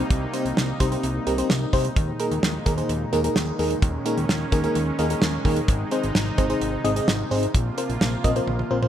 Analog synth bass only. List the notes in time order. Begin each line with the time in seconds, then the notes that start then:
0.11 C2
0.45 C2
0.57 C2
0.80 C2
1.03 C2
1.27 C2
1.50 C2
1.73 C2
1.96 D#2
2.31 D#2
2.43 D#2
2.66 D#2
2.89 D#2
3.13 D#2
3.36 D#2
3.59 D#2
3.82 D#2
4.17 D#2
4.29 D#2
4.52 D#2
4.76 D#2
4.99 D#2
5.22 D#2
5.45 D#2
5.68 G#1
6.04 G#1
6.15 G#1
6.38 G#1
6.61 G#1
6.85 G#1
7.08 G#1
7.31 G#1
7.55 A#1
7.89 A#1
8.01 A#1
8.24 A#1
8.47 A#1
8.71 A#1